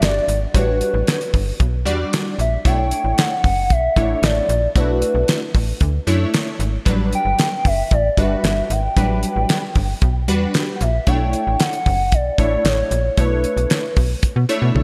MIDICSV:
0, 0, Header, 1, 5, 480
1, 0, Start_track
1, 0, Key_signature, 2, "minor"
1, 0, Tempo, 526316
1, 498, Time_signature, 4, 2, 24, 8
1, 13527, End_track
2, 0, Start_track
2, 0, Title_t, "Soft synth lead"
2, 0, Program_c, 0, 80
2, 30, Note_on_c, 0, 74, 97
2, 471, Note_off_c, 0, 74, 0
2, 513, Note_on_c, 0, 71, 82
2, 1429, Note_off_c, 0, 71, 0
2, 2194, Note_on_c, 0, 76, 100
2, 2431, Note_on_c, 0, 79, 112
2, 2445, Note_off_c, 0, 76, 0
2, 2905, Note_off_c, 0, 79, 0
2, 2915, Note_on_c, 0, 78, 113
2, 3392, Note_on_c, 0, 76, 119
2, 3406, Note_off_c, 0, 78, 0
2, 3868, Note_on_c, 0, 74, 96
2, 3881, Note_off_c, 0, 76, 0
2, 4347, Note_on_c, 0, 71, 88
2, 4361, Note_off_c, 0, 74, 0
2, 5303, Note_off_c, 0, 71, 0
2, 6519, Note_on_c, 0, 79, 115
2, 6990, Note_on_c, 0, 76, 94
2, 7004, Note_off_c, 0, 79, 0
2, 7232, Note_on_c, 0, 74, 105
2, 7245, Note_off_c, 0, 76, 0
2, 7470, Note_on_c, 0, 76, 99
2, 7484, Note_off_c, 0, 74, 0
2, 7952, Note_on_c, 0, 79, 101
2, 7965, Note_off_c, 0, 76, 0
2, 9385, Note_off_c, 0, 79, 0
2, 9811, Note_on_c, 0, 78, 77
2, 9867, Note_on_c, 0, 76, 99
2, 9881, Note_off_c, 0, 78, 0
2, 10100, Note_off_c, 0, 76, 0
2, 10106, Note_on_c, 0, 79, 112
2, 10587, Note_on_c, 0, 78, 108
2, 10601, Note_off_c, 0, 79, 0
2, 11070, Note_on_c, 0, 74, 106
2, 11084, Note_off_c, 0, 78, 0
2, 11554, Note_on_c, 0, 73, 98
2, 11568, Note_off_c, 0, 74, 0
2, 12026, Note_off_c, 0, 73, 0
2, 12033, Note_on_c, 0, 71, 91
2, 12949, Note_off_c, 0, 71, 0
2, 13527, End_track
3, 0, Start_track
3, 0, Title_t, "Analog polysynth"
3, 0, Program_c, 1, 90
3, 0, Note_on_c, 1, 55, 77
3, 0, Note_on_c, 1, 62, 73
3, 0, Note_on_c, 1, 66, 75
3, 0, Note_on_c, 1, 74, 82
3, 232, Note_off_c, 1, 55, 0
3, 235, Note_off_c, 1, 62, 0
3, 235, Note_off_c, 1, 66, 0
3, 236, Note_off_c, 1, 74, 0
3, 495, Note_on_c, 1, 55, 72
3, 496, Note_on_c, 1, 62, 75
3, 498, Note_on_c, 1, 66, 67
3, 503, Note_on_c, 1, 73, 83
3, 1108, Note_off_c, 1, 55, 0
3, 1108, Note_off_c, 1, 62, 0
3, 1110, Note_off_c, 1, 66, 0
3, 1112, Note_off_c, 1, 73, 0
3, 1691, Note_on_c, 1, 55, 92
3, 1692, Note_on_c, 1, 62, 80
3, 1696, Note_on_c, 1, 66, 84
3, 1697, Note_on_c, 1, 74, 92
3, 2153, Note_off_c, 1, 55, 0
3, 2153, Note_off_c, 1, 62, 0
3, 2155, Note_off_c, 1, 66, 0
3, 2156, Note_off_c, 1, 74, 0
3, 2415, Note_on_c, 1, 57, 73
3, 2418, Note_on_c, 1, 64, 69
3, 2419, Note_on_c, 1, 62, 68
3, 2421, Note_on_c, 1, 73, 87
3, 3028, Note_off_c, 1, 57, 0
3, 3029, Note_off_c, 1, 64, 0
3, 3030, Note_off_c, 1, 62, 0
3, 3031, Note_off_c, 1, 73, 0
3, 3613, Note_on_c, 1, 57, 75
3, 3615, Note_on_c, 1, 62, 68
3, 3619, Note_on_c, 1, 64, 75
3, 3621, Note_on_c, 1, 73, 82
3, 4074, Note_off_c, 1, 57, 0
3, 4075, Note_off_c, 1, 62, 0
3, 4077, Note_off_c, 1, 64, 0
3, 4078, Note_off_c, 1, 73, 0
3, 4335, Note_on_c, 1, 57, 83
3, 4336, Note_on_c, 1, 62, 67
3, 4339, Note_on_c, 1, 64, 70
3, 4341, Note_on_c, 1, 66, 91
3, 4948, Note_off_c, 1, 57, 0
3, 4948, Note_off_c, 1, 62, 0
3, 4950, Note_off_c, 1, 64, 0
3, 4951, Note_off_c, 1, 66, 0
3, 5534, Note_on_c, 1, 57, 92
3, 5535, Note_on_c, 1, 62, 84
3, 5539, Note_on_c, 1, 64, 87
3, 5541, Note_on_c, 1, 73, 96
3, 5994, Note_off_c, 1, 57, 0
3, 5995, Note_off_c, 1, 62, 0
3, 5997, Note_off_c, 1, 64, 0
3, 5998, Note_off_c, 1, 73, 0
3, 6250, Note_on_c, 1, 55, 87
3, 6250, Note_on_c, 1, 62, 82
3, 6256, Note_on_c, 1, 54, 88
3, 6256, Note_on_c, 1, 71, 96
3, 6865, Note_off_c, 1, 55, 0
3, 6865, Note_off_c, 1, 62, 0
3, 6868, Note_off_c, 1, 54, 0
3, 6869, Note_off_c, 1, 71, 0
3, 7456, Note_on_c, 1, 55, 77
3, 7458, Note_on_c, 1, 62, 64
3, 7461, Note_on_c, 1, 71, 80
3, 7462, Note_on_c, 1, 66, 68
3, 7916, Note_off_c, 1, 55, 0
3, 7916, Note_off_c, 1, 62, 0
3, 7918, Note_off_c, 1, 66, 0
3, 7918, Note_off_c, 1, 71, 0
3, 8177, Note_on_c, 1, 55, 83
3, 8178, Note_on_c, 1, 62, 71
3, 8179, Note_on_c, 1, 54, 75
3, 8182, Note_on_c, 1, 71, 87
3, 8789, Note_off_c, 1, 55, 0
3, 8789, Note_off_c, 1, 62, 0
3, 8790, Note_off_c, 1, 54, 0
3, 8791, Note_off_c, 1, 71, 0
3, 9375, Note_on_c, 1, 55, 93
3, 9378, Note_on_c, 1, 62, 77
3, 9378, Note_on_c, 1, 66, 83
3, 9383, Note_on_c, 1, 71, 102
3, 9835, Note_off_c, 1, 55, 0
3, 9836, Note_off_c, 1, 62, 0
3, 9836, Note_off_c, 1, 66, 0
3, 9839, Note_off_c, 1, 71, 0
3, 10099, Note_on_c, 1, 57, 76
3, 10100, Note_on_c, 1, 62, 73
3, 10102, Note_on_c, 1, 64, 72
3, 10107, Note_on_c, 1, 73, 85
3, 10710, Note_off_c, 1, 57, 0
3, 10710, Note_off_c, 1, 62, 0
3, 10711, Note_off_c, 1, 64, 0
3, 10714, Note_off_c, 1, 73, 0
3, 11295, Note_on_c, 1, 57, 76
3, 11297, Note_on_c, 1, 62, 69
3, 11299, Note_on_c, 1, 73, 81
3, 11300, Note_on_c, 1, 64, 70
3, 11755, Note_off_c, 1, 57, 0
3, 11756, Note_off_c, 1, 62, 0
3, 11757, Note_off_c, 1, 64, 0
3, 11757, Note_off_c, 1, 73, 0
3, 12014, Note_on_c, 1, 57, 78
3, 12017, Note_on_c, 1, 62, 67
3, 12017, Note_on_c, 1, 64, 72
3, 12021, Note_on_c, 1, 73, 91
3, 12627, Note_off_c, 1, 57, 0
3, 12629, Note_off_c, 1, 62, 0
3, 12629, Note_off_c, 1, 64, 0
3, 12631, Note_off_c, 1, 73, 0
3, 13213, Note_on_c, 1, 57, 91
3, 13215, Note_on_c, 1, 62, 83
3, 13216, Note_on_c, 1, 64, 85
3, 13220, Note_on_c, 1, 73, 102
3, 13527, Note_off_c, 1, 57, 0
3, 13527, Note_off_c, 1, 62, 0
3, 13527, Note_off_c, 1, 64, 0
3, 13527, Note_off_c, 1, 73, 0
3, 13527, End_track
4, 0, Start_track
4, 0, Title_t, "FM bass"
4, 0, Program_c, 2, 39
4, 14, Note_on_c, 2, 31, 95
4, 185, Note_off_c, 2, 31, 0
4, 256, Note_on_c, 2, 32, 91
4, 426, Note_off_c, 2, 32, 0
4, 496, Note_on_c, 2, 33, 108
4, 751, Note_off_c, 2, 33, 0
4, 855, Note_on_c, 2, 33, 90
4, 941, Note_off_c, 2, 33, 0
4, 1219, Note_on_c, 2, 31, 89
4, 1388, Note_off_c, 2, 31, 0
4, 1458, Note_on_c, 2, 35, 95
4, 1695, Note_on_c, 2, 40, 85
4, 1709, Note_off_c, 2, 35, 0
4, 1866, Note_off_c, 2, 40, 0
4, 2176, Note_on_c, 2, 34, 102
4, 2346, Note_off_c, 2, 34, 0
4, 2417, Note_on_c, 2, 35, 100
4, 2672, Note_off_c, 2, 35, 0
4, 2776, Note_on_c, 2, 33, 79
4, 2861, Note_off_c, 2, 33, 0
4, 3137, Note_on_c, 2, 30, 89
4, 3378, Note_on_c, 2, 35, 109
4, 3392, Note_off_c, 2, 30, 0
4, 3547, Note_off_c, 2, 35, 0
4, 3617, Note_on_c, 2, 33, 95
4, 3787, Note_off_c, 2, 33, 0
4, 3853, Note_on_c, 2, 33, 95
4, 4024, Note_off_c, 2, 33, 0
4, 4095, Note_on_c, 2, 34, 101
4, 4265, Note_off_c, 2, 34, 0
4, 4337, Note_on_c, 2, 35, 108
4, 4591, Note_off_c, 2, 35, 0
4, 4693, Note_on_c, 2, 35, 86
4, 4779, Note_off_c, 2, 35, 0
4, 5058, Note_on_c, 2, 33, 94
4, 5227, Note_off_c, 2, 33, 0
4, 5298, Note_on_c, 2, 38, 100
4, 5467, Note_off_c, 2, 38, 0
4, 5537, Note_on_c, 2, 42, 92
4, 5707, Note_off_c, 2, 42, 0
4, 6015, Note_on_c, 2, 32, 99
4, 6185, Note_off_c, 2, 32, 0
4, 6258, Note_on_c, 2, 33, 106
4, 6512, Note_off_c, 2, 33, 0
4, 6614, Note_on_c, 2, 31, 77
4, 6700, Note_off_c, 2, 31, 0
4, 6977, Note_on_c, 2, 30, 92
4, 7147, Note_off_c, 2, 30, 0
4, 7217, Note_on_c, 2, 33, 109
4, 7386, Note_off_c, 2, 33, 0
4, 7455, Note_on_c, 2, 31, 89
4, 7625, Note_off_c, 2, 31, 0
4, 7695, Note_on_c, 2, 31, 91
4, 7865, Note_off_c, 2, 31, 0
4, 7936, Note_on_c, 2, 32, 95
4, 8106, Note_off_c, 2, 32, 0
4, 8177, Note_on_c, 2, 33, 109
4, 8432, Note_off_c, 2, 33, 0
4, 8537, Note_on_c, 2, 33, 84
4, 8622, Note_off_c, 2, 33, 0
4, 8897, Note_on_c, 2, 31, 96
4, 9067, Note_off_c, 2, 31, 0
4, 9137, Note_on_c, 2, 35, 101
4, 9378, Note_on_c, 2, 40, 96
4, 9392, Note_off_c, 2, 35, 0
4, 9548, Note_off_c, 2, 40, 0
4, 9860, Note_on_c, 2, 34, 107
4, 10029, Note_off_c, 2, 34, 0
4, 10096, Note_on_c, 2, 35, 114
4, 10351, Note_off_c, 2, 35, 0
4, 10462, Note_on_c, 2, 33, 82
4, 10545, Note_off_c, 2, 33, 0
4, 10818, Note_on_c, 2, 30, 106
4, 11055, Note_on_c, 2, 35, 102
4, 11068, Note_off_c, 2, 30, 0
4, 11225, Note_off_c, 2, 35, 0
4, 11294, Note_on_c, 2, 33, 96
4, 11465, Note_off_c, 2, 33, 0
4, 11535, Note_on_c, 2, 33, 98
4, 11705, Note_off_c, 2, 33, 0
4, 11775, Note_on_c, 2, 34, 97
4, 11945, Note_off_c, 2, 34, 0
4, 12016, Note_on_c, 2, 35, 113
4, 12271, Note_off_c, 2, 35, 0
4, 12372, Note_on_c, 2, 35, 84
4, 12459, Note_off_c, 2, 35, 0
4, 12738, Note_on_c, 2, 35, 88
4, 12907, Note_off_c, 2, 35, 0
4, 13096, Note_on_c, 2, 47, 91
4, 13182, Note_off_c, 2, 47, 0
4, 13333, Note_on_c, 2, 47, 87
4, 13419, Note_off_c, 2, 47, 0
4, 13453, Note_on_c, 2, 35, 87
4, 13527, Note_off_c, 2, 35, 0
4, 13527, End_track
5, 0, Start_track
5, 0, Title_t, "Drums"
5, 18, Note_on_c, 9, 42, 84
5, 24, Note_on_c, 9, 38, 108
5, 30, Note_on_c, 9, 39, 89
5, 109, Note_off_c, 9, 42, 0
5, 116, Note_off_c, 9, 38, 0
5, 121, Note_off_c, 9, 39, 0
5, 260, Note_on_c, 9, 42, 64
5, 351, Note_off_c, 9, 42, 0
5, 497, Note_on_c, 9, 36, 106
5, 500, Note_on_c, 9, 42, 94
5, 588, Note_off_c, 9, 36, 0
5, 592, Note_off_c, 9, 42, 0
5, 738, Note_on_c, 9, 42, 58
5, 829, Note_off_c, 9, 42, 0
5, 979, Note_on_c, 9, 42, 84
5, 988, Note_on_c, 9, 38, 112
5, 993, Note_on_c, 9, 39, 91
5, 1070, Note_off_c, 9, 42, 0
5, 1079, Note_off_c, 9, 38, 0
5, 1084, Note_off_c, 9, 39, 0
5, 1103, Note_on_c, 9, 42, 53
5, 1194, Note_off_c, 9, 42, 0
5, 1220, Note_on_c, 9, 36, 88
5, 1222, Note_on_c, 9, 46, 60
5, 1311, Note_off_c, 9, 36, 0
5, 1313, Note_off_c, 9, 46, 0
5, 1460, Note_on_c, 9, 36, 91
5, 1462, Note_on_c, 9, 42, 87
5, 1551, Note_off_c, 9, 36, 0
5, 1553, Note_off_c, 9, 42, 0
5, 1703, Note_on_c, 9, 42, 80
5, 1794, Note_off_c, 9, 42, 0
5, 1943, Note_on_c, 9, 42, 90
5, 1950, Note_on_c, 9, 38, 99
5, 1956, Note_on_c, 9, 39, 90
5, 2034, Note_off_c, 9, 42, 0
5, 2041, Note_off_c, 9, 38, 0
5, 2047, Note_off_c, 9, 39, 0
5, 2183, Note_on_c, 9, 42, 63
5, 2274, Note_off_c, 9, 42, 0
5, 2418, Note_on_c, 9, 36, 107
5, 2420, Note_on_c, 9, 42, 98
5, 2510, Note_off_c, 9, 36, 0
5, 2511, Note_off_c, 9, 42, 0
5, 2657, Note_on_c, 9, 42, 68
5, 2748, Note_off_c, 9, 42, 0
5, 2898, Note_on_c, 9, 42, 85
5, 2907, Note_on_c, 9, 38, 112
5, 2912, Note_on_c, 9, 39, 88
5, 2989, Note_off_c, 9, 42, 0
5, 2998, Note_off_c, 9, 38, 0
5, 3004, Note_off_c, 9, 39, 0
5, 3138, Note_on_c, 9, 46, 62
5, 3139, Note_on_c, 9, 36, 90
5, 3230, Note_off_c, 9, 36, 0
5, 3230, Note_off_c, 9, 46, 0
5, 3377, Note_on_c, 9, 42, 84
5, 3378, Note_on_c, 9, 36, 93
5, 3468, Note_off_c, 9, 42, 0
5, 3469, Note_off_c, 9, 36, 0
5, 3615, Note_on_c, 9, 36, 92
5, 3619, Note_on_c, 9, 42, 76
5, 3707, Note_off_c, 9, 36, 0
5, 3711, Note_off_c, 9, 42, 0
5, 3857, Note_on_c, 9, 42, 86
5, 3864, Note_on_c, 9, 38, 102
5, 3870, Note_on_c, 9, 39, 83
5, 3948, Note_off_c, 9, 42, 0
5, 3955, Note_off_c, 9, 38, 0
5, 3961, Note_off_c, 9, 39, 0
5, 4098, Note_on_c, 9, 42, 65
5, 4189, Note_off_c, 9, 42, 0
5, 4337, Note_on_c, 9, 36, 113
5, 4338, Note_on_c, 9, 42, 97
5, 4428, Note_off_c, 9, 36, 0
5, 4429, Note_off_c, 9, 42, 0
5, 4577, Note_on_c, 9, 42, 64
5, 4668, Note_off_c, 9, 42, 0
5, 4816, Note_on_c, 9, 42, 86
5, 4824, Note_on_c, 9, 38, 112
5, 4830, Note_on_c, 9, 39, 94
5, 4907, Note_off_c, 9, 42, 0
5, 4915, Note_off_c, 9, 38, 0
5, 4921, Note_off_c, 9, 39, 0
5, 5057, Note_on_c, 9, 46, 63
5, 5058, Note_on_c, 9, 36, 91
5, 5148, Note_off_c, 9, 46, 0
5, 5149, Note_off_c, 9, 36, 0
5, 5294, Note_on_c, 9, 42, 82
5, 5297, Note_on_c, 9, 36, 98
5, 5386, Note_off_c, 9, 42, 0
5, 5388, Note_off_c, 9, 36, 0
5, 5538, Note_on_c, 9, 42, 76
5, 5629, Note_off_c, 9, 42, 0
5, 5779, Note_on_c, 9, 42, 84
5, 5786, Note_on_c, 9, 38, 100
5, 5792, Note_on_c, 9, 39, 88
5, 5870, Note_off_c, 9, 42, 0
5, 5877, Note_off_c, 9, 38, 0
5, 5883, Note_off_c, 9, 39, 0
5, 6018, Note_on_c, 9, 42, 65
5, 6109, Note_off_c, 9, 42, 0
5, 6257, Note_on_c, 9, 36, 110
5, 6258, Note_on_c, 9, 42, 101
5, 6348, Note_off_c, 9, 36, 0
5, 6349, Note_off_c, 9, 42, 0
5, 6499, Note_on_c, 9, 42, 61
5, 6590, Note_off_c, 9, 42, 0
5, 6736, Note_on_c, 9, 42, 82
5, 6744, Note_on_c, 9, 38, 109
5, 6750, Note_on_c, 9, 39, 88
5, 6827, Note_off_c, 9, 42, 0
5, 6836, Note_off_c, 9, 38, 0
5, 6841, Note_off_c, 9, 39, 0
5, 6976, Note_on_c, 9, 46, 61
5, 6977, Note_on_c, 9, 36, 86
5, 7068, Note_off_c, 9, 36, 0
5, 7068, Note_off_c, 9, 46, 0
5, 7214, Note_on_c, 9, 42, 86
5, 7217, Note_on_c, 9, 36, 100
5, 7306, Note_off_c, 9, 42, 0
5, 7308, Note_off_c, 9, 36, 0
5, 7455, Note_on_c, 9, 36, 88
5, 7458, Note_on_c, 9, 42, 78
5, 7546, Note_off_c, 9, 36, 0
5, 7550, Note_off_c, 9, 42, 0
5, 7696, Note_on_c, 9, 42, 86
5, 7703, Note_on_c, 9, 38, 108
5, 7709, Note_on_c, 9, 39, 89
5, 7787, Note_off_c, 9, 42, 0
5, 7794, Note_off_c, 9, 38, 0
5, 7800, Note_off_c, 9, 39, 0
5, 7937, Note_on_c, 9, 42, 64
5, 8028, Note_off_c, 9, 42, 0
5, 8177, Note_on_c, 9, 36, 103
5, 8178, Note_on_c, 9, 42, 91
5, 8268, Note_off_c, 9, 36, 0
5, 8269, Note_off_c, 9, 42, 0
5, 8415, Note_on_c, 9, 42, 64
5, 8507, Note_off_c, 9, 42, 0
5, 8655, Note_on_c, 9, 42, 87
5, 8664, Note_on_c, 9, 38, 114
5, 8669, Note_on_c, 9, 39, 89
5, 8746, Note_off_c, 9, 42, 0
5, 8755, Note_off_c, 9, 38, 0
5, 8761, Note_off_c, 9, 39, 0
5, 8894, Note_on_c, 9, 46, 62
5, 8898, Note_on_c, 9, 36, 91
5, 8985, Note_off_c, 9, 46, 0
5, 8989, Note_off_c, 9, 36, 0
5, 9134, Note_on_c, 9, 42, 83
5, 9137, Note_on_c, 9, 36, 90
5, 9226, Note_off_c, 9, 42, 0
5, 9229, Note_off_c, 9, 36, 0
5, 9377, Note_on_c, 9, 42, 80
5, 9468, Note_off_c, 9, 42, 0
5, 9614, Note_on_c, 9, 42, 80
5, 9621, Note_on_c, 9, 38, 105
5, 9626, Note_on_c, 9, 39, 82
5, 9705, Note_off_c, 9, 42, 0
5, 9712, Note_off_c, 9, 38, 0
5, 9718, Note_off_c, 9, 39, 0
5, 9856, Note_on_c, 9, 42, 61
5, 9947, Note_off_c, 9, 42, 0
5, 10094, Note_on_c, 9, 42, 92
5, 10096, Note_on_c, 9, 36, 107
5, 10185, Note_off_c, 9, 42, 0
5, 10187, Note_off_c, 9, 36, 0
5, 10334, Note_on_c, 9, 42, 61
5, 10425, Note_off_c, 9, 42, 0
5, 10575, Note_on_c, 9, 42, 92
5, 10584, Note_on_c, 9, 38, 115
5, 10589, Note_on_c, 9, 39, 83
5, 10666, Note_off_c, 9, 42, 0
5, 10675, Note_off_c, 9, 38, 0
5, 10681, Note_off_c, 9, 39, 0
5, 10696, Note_on_c, 9, 42, 52
5, 10788, Note_off_c, 9, 42, 0
5, 10815, Note_on_c, 9, 46, 63
5, 10818, Note_on_c, 9, 36, 87
5, 10906, Note_off_c, 9, 46, 0
5, 10909, Note_off_c, 9, 36, 0
5, 11052, Note_on_c, 9, 42, 87
5, 11057, Note_on_c, 9, 36, 95
5, 11143, Note_off_c, 9, 42, 0
5, 11148, Note_off_c, 9, 36, 0
5, 11294, Note_on_c, 9, 36, 88
5, 11295, Note_on_c, 9, 42, 74
5, 11385, Note_off_c, 9, 36, 0
5, 11386, Note_off_c, 9, 42, 0
5, 11535, Note_on_c, 9, 42, 84
5, 11542, Note_on_c, 9, 38, 108
5, 11548, Note_on_c, 9, 39, 83
5, 11626, Note_off_c, 9, 42, 0
5, 11633, Note_off_c, 9, 38, 0
5, 11639, Note_off_c, 9, 39, 0
5, 11776, Note_on_c, 9, 42, 67
5, 11867, Note_off_c, 9, 42, 0
5, 12015, Note_on_c, 9, 42, 95
5, 12016, Note_on_c, 9, 36, 102
5, 12106, Note_off_c, 9, 42, 0
5, 12107, Note_off_c, 9, 36, 0
5, 12255, Note_on_c, 9, 42, 59
5, 12347, Note_off_c, 9, 42, 0
5, 12380, Note_on_c, 9, 42, 42
5, 12471, Note_off_c, 9, 42, 0
5, 12495, Note_on_c, 9, 42, 86
5, 12504, Note_on_c, 9, 38, 103
5, 12509, Note_on_c, 9, 39, 96
5, 12586, Note_off_c, 9, 42, 0
5, 12595, Note_off_c, 9, 38, 0
5, 12600, Note_off_c, 9, 39, 0
5, 12735, Note_on_c, 9, 46, 66
5, 12738, Note_on_c, 9, 36, 95
5, 12826, Note_off_c, 9, 46, 0
5, 12829, Note_off_c, 9, 36, 0
5, 12975, Note_on_c, 9, 42, 82
5, 12977, Note_on_c, 9, 36, 101
5, 13066, Note_off_c, 9, 42, 0
5, 13068, Note_off_c, 9, 36, 0
5, 13217, Note_on_c, 9, 42, 79
5, 13308, Note_off_c, 9, 42, 0
5, 13458, Note_on_c, 9, 48, 51
5, 13527, Note_off_c, 9, 48, 0
5, 13527, End_track
0, 0, End_of_file